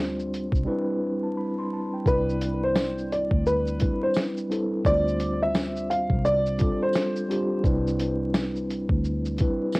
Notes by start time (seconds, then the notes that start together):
Already playing: D2 G3 C4 D4 F4 C5
0.20 shaker
0.34 closed hi-hat, shaker
0.52 C2, kick, shaker
0.65 G3 C4 D4 E4 B4
1.23 A5
1.37 B5
1.59 C6
1.73 A5
1.94 G5
2.06 C2 G3 C4 D4 E4 B4 D5, kick, shaker
2.29 shaker
2.41 closed hi-hat, shaker
2.64 C5
2.76 snare, tambourine, shaker
2.98 shaker
3.12 D5, closed hi-hat, shaker
3.31 D2, kick
3.46 B4, shaker
3.67 shaker
3.78 G3 C4 D4 E4 B4, kick, closed hi-hat, shaker
4.03 C5
4.14 snare, tambourine, shaker
4.37 shaker
4.49 G3 C4 D4 E4 A4, closed hi-hat, shaker
4.84 D2 G3 C4 D4 F4 C5 D5, kick, shaker
5.08 shaker
5.20 closed hi-hat, shaker
5.43 E5
5.55 snare, tambourine, shaker
5.76 shaker
5.90 F5, closed hi-hat, shaker
6.10 C2, kick
6.25 D5, shaker
6.46 shaker
6.58 G3 C4 D4 F4 A4, kick, closed hi-hat, shaker
6.83 C5
6.93 snare, tambourine, shaker
7.16 shaker
7.29 G3 C4 D4 F4 G4, closed hi-hat, shaker
7.63 C2 G3 C4 D4 E4 B4, kick, shaker
7.87 shaker
8.00 closed hi-hat, shaker
8.34 snare, tambourine, shaker
8.56 shaker
8.70 closed hi-hat, shaker
8.89 D2, kick
9.04 shaker
9.25 shaker
9.38 G3 C4 D4 E4 B4, kick, closed hi-hat, shaker
9.72 snare, tambourine, shaker